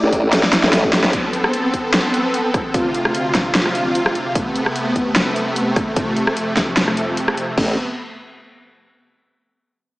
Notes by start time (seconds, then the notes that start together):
Already playing: A3 E4 D5
0.03 A1
0.13 kick, closed hi-hat
0.23 A1
0.33 snare, closed hi-hat, crash
0.43 snare
0.53 snare, closed hi-hat
0.64 A1, snare
0.73 A1, snare, closed hi-hat, crash
0.84 kick
0.93 snare, open hi-hat
1.04 snare
1.13 B3 C4 A4, kick, closed hi-hat
1.33 closed hi-hat
1.44 cross-stick
1.53 closed hi-hat
1.74 kick, closed hi-hat
1.94 snare, closed hi-hat
2.14 closed hi-hat
2.34 closed hi-hat
2.54 kick, cross-stick, closed hi-hat
2.74 D2 C3 F4, kick, closed hi-hat
2.94 closed hi-hat
3.05 cross-stick
3.15 closed hi-hat
3.35 kick, snare, closed hi-hat
3.55 snare, closed hi-hat
3.66 cross-stick
3.75 closed hi-hat
3.95 closed hi-hat
4.06 cross-stick
4.15 closed hi-hat
4.35 A3 B3, kick, closed hi-hat
4.56 closed hi-hat
4.66 cross-stick
4.76 closed hi-hat
4.96 kick, closed hi-hat
5.16 snare, closed hi-hat
5.36 closed hi-hat
5.56 closed hi-hat
5.76 kick, cross-stick, closed hi-hat
5.96 F2, kick, closed hi-hat
6.17 closed hi-hat
6.27 cross-stick
6.37 closed hi-hat
6.57 kick, snare, closed hi-hat
6.77 snare, closed hi-hat
6.88 cross-stick
6.97 closed hi-hat
7.17 closed hi-hat
7.28 cross-stick
7.37 closed hi-hat
7.58 A1 C3 A3 B3, kick, crash